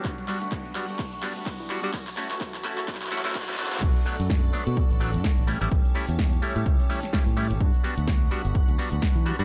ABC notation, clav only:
X:1
M:4/4
L:1/16
Q:"Swing 16ths" 1/4=127
K:Bm
V:1 name="Clav"
[G,B,DF]2 [G,B,DF] z3 [G,B,DF] z3 [G,B,DF] z3 [G,B,DF] [G,B,DF] | z2 [A,CEF] z3 [A,CEF]4 [A,CEF] [A,CEF]2 [A,CEF] [F,A,B,D]2- | [F,A,B,D]2 [F,A,B,D] z3 [F,A,B,D] z3 [F,A,B,D] z3 [G,A,CE] [G,A,CE] | z2 [G,A,CE] z3 [G,A,CE]4 [G,A,CE] z [G,A,CE] z [G,A,CE] z |
z2 [G,B,DF] z3 [G,B,DF] z3 [G,B,DF] z3 [G,B,DF] [G,B,DF] |]